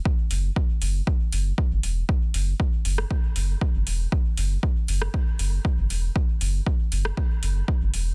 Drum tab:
HH |--o---o---o---o-|--o---o---o---o-|--o---o---o---o-|--o---o---o---o-|
SD |----------------|-------r--------|-------r--------|-------r--------|
BD |o---o---o---o---|o---o---o---o---|o---o---o---o---|o---o---o---o---|